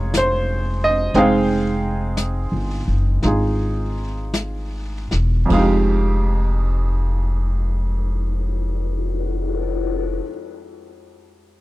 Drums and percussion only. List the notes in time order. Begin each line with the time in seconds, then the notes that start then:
0.14 brush sweep, snare, hi-hat pedal
1.14 brush sweep, snare
2.17 brush sweep, snare, hi-hat pedal
3.22 brush sweep, snare
4.34 brush sweep, snare, hi-hat pedal
5.11 snare
5.50 kick, ride
6.31 cymbal swell